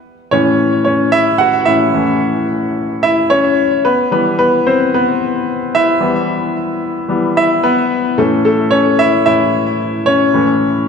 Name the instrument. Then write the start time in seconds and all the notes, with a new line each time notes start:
grand piano
0.31 A2 E3 C#4 C#5
0.85 C#4 C#5
1.12 E4 E5
1.38 F#4 F#5
1.65 A2 E3 C#4 E4 E5
1.94 A2 E3 C#4
3.03 E4 E5
3.30 C#4 C#5
3.85 B3 B4
4.11 E3 G3 B3 B4
4.39 B3 B4
4.67 C4 C5
4.94 B3 B4
5.75 E4 E5
6.00 E3 G3 B3
7.09 E3 G3 B3
7.37 E4 E5
7.64 B3 B4
8.18 A2 E3 A3 C#4 A4
8.45 A3 A4
8.71 C#4 C#5
8.99 E4 E5
9.26 A2 E3 C#4 E4 E5
10.06 C#4 C#5
10.34 A2 E3 C#4